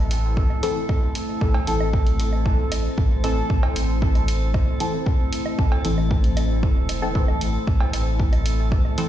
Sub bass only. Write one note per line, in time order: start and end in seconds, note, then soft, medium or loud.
0.00 0.55 A1 loud
1.41 1.58 A1 loud
1.67 2.64 A1 loud
2.72 2.88 A1 medium
2.98 3.42 A1 medium
3.50 3.66 A1 loud
3.76 4.73 A1 loud
5.59 5.75 A1 loud
5.85 6.65 A1 loud
6.63 7.33 E1 medium
7.41 7.58 A1 medium
7.67 7.84 A1 loud
7.93 8.90 A1 loud